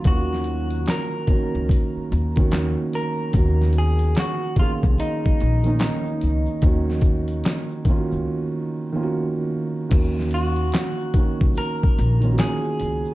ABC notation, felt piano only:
X:1
M:4/4
L:1/16
Q:"Swing 16ths" 1/4=73
K:Ebm
V:1 name="Felt piano"
[E,B,DFG]6 [E,B,DG]4- [E,B,DG] [E,B,DG]4- [E,B,DG] | [E,B,DG]6 [E,B,DA]4- [E,B,DA] [E,B,DE]4- [E,B,DE] | [E,B,DG]6 [E,B,DFG]4- [E,B,DFG] [E,B,DFG]4- [E,B,DFG] | [E,B,DG]6 [E,B,DG]4- [E,B,DG] [E,B,DFG]4- [E,B,DFG] |]